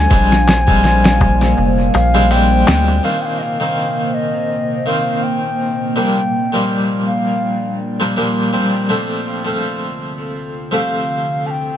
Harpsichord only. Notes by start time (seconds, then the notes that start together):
0.10 G3 G#3 C4 D4
0.67 G3 G#3 C4 F4
2.14 G3 G#3 C4 D4
2.30 G3 G#3 C4 D4
2.67 G3 G#3 C4 D4
3.03 D#3 A#3 C4 D4
3.60 D#3 A#3 C4 D#4
4.86 D#3 A#3 C4 F4
5.96 A#2 F3 G3 A#3 D4
6.52 A#2 F3 G3 A#3 F4
8.00 A#2 F3 G3 A#3 D4
8.16 A#2 F3 G3 A#3 D4
8.53 A#2 F3 G3 A#3 C4
8.89 F3 A3 C4 D4
9.45 F3 A3 C4 F4
10.71 F3 A3 C4 G4